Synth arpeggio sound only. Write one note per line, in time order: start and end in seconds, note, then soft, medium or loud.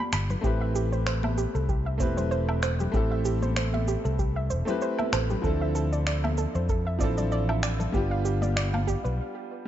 0.00 0.12 B5 loud
0.13 0.29 B5 loud
0.30 0.44 B4 medium
0.44 0.60 G4 medium
0.61 0.75 E5 medium
0.75 0.85 G4 loud
0.92 1.00 C5 medium
1.06 1.22 C5 loud
1.24 1.31 E5 medium
1.38 1.54 G4 medium
1.55 1.68 A4 medium
1.69 1.85 G4 medium
1.86 2.00 E5 medium
2.00 2.10 C5 medium
2.17 2.25 C5 medium
2.31 2.47 C5 loud
2.49 2.56 E5 medium
2.63 2.72 C5 loud
2.80 2.88 G4 medium
2.94 3.10 G4 medium
3.12 3.25 E5 medium
3.25 3.35 G4 loud
3.42 3.50 C5 medium
3.57 3.72 C5 loud
3.74 3.81 E5 medium
3.88 4.04 G4 medium
4.05 4.18 A4 medium
4.19 4.35 G4 medium
4.36 4.50 E5 medium
4.50 4.60 C5 medium
4.67 4.75 C5 medium
4.82 4.97 C5 loud
4.99 5.06 E5 medium
5.13 5.22 C5 loud
5.30 5.38 G4 medium
5.44 5.60 A4 medium
5.61 5.75 E5 medium
5.75 5.85 A4 loud
5.92 6.00 D5 medium
6.07 6.22 D5 loud
6.24 6.32 E5 medium
6.38 6.54 A4 medium
6.55 6.68 C5 medium
6.69 6.85 A4 medium
6.87 7.00 E5 medium
7.00 7.10 D5 medium
7.18 7.25 D5 medium
7.32 7.47 D5 loud
7.49 7.57 E5 medium
7.63 7.72 D5 loud
7.80 7.87 A4 medium
7.94 8.10 G4 medium
8.11 8.25 F5 medium
8.25 8.35 G4 medium
8.42 8.50 D5 medium
8.56 8.72 D5 loud
8.74 8.81 F5 medium
8.87 9.04 G4 loud
9.04 9.17 B4 medium